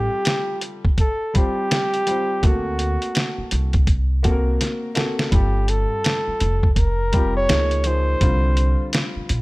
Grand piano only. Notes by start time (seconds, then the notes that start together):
Already playing: G3 C4 F4 A4
1.34 G3 C4 F4 C5
2.07 G3 C4 F4 C5
2.42 A#3 C4 F#4 A4
4.23 A#3 C4 F#4 A4
4.31 A#4
4.95 A#3 C4 F#4 A4
5.31 G3 C4 F4 A4
7.12 G3 C4 F4 G4
7.48 F3 A#3 D#4 G#4
7.84 F3 A#3 D#4 G#4
8.20 D3 G3 C4 F4